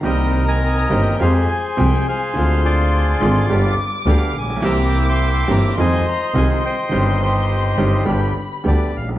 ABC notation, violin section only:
X:1
M:4/4
L:1/8
Q:1/4=104
K:Cm
V:1 name="Violin section"
b4 a4 | c'4 d'4 | d'4 c'4 | c'4 =b3 z |]